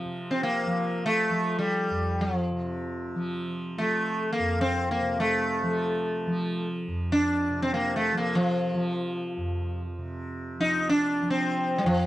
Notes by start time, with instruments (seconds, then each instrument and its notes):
Already playing: tanpura F2 C3 F3
0.05 tanpura C3
0.31 sitar C4
0.43 sitar A#3
0.67 tanpura F3
1.06 sitar A3
1.30 tanpura F3
1.59 sitar G3
1.90 tanpura F2
2.21 sitar F3
2.52 tanpura C3
3.15 tanpura F3
3.77 tanpura F3, sitar A3
4.33 sitar A#3
4.39 tanpura F2
4.61 sitar C4
4.91 sitar A#3
5.01 tanpura C3
5.20 sitar A3
5.63 tanpura F3
6.27 tanpura F3
6.88 tanpura F2
7.12 sitar D4
7.50 tanpura C3
7.62 sitar C4
7.74 sitar A#3
7.96 sitar A3
8.12 tanpura F3
8.17 sitar A#3
8.35 sitar F3
8.74 tanpura F3
9.37 tanpura F2
9.98 tanpura C3
10.59 tanpura F3, sitar D#4
10.89 sitar D4
11.22 tanpura F3
11.30 sitar C4
11.78 sitar G3
11.84 tanpura F2, sitar F3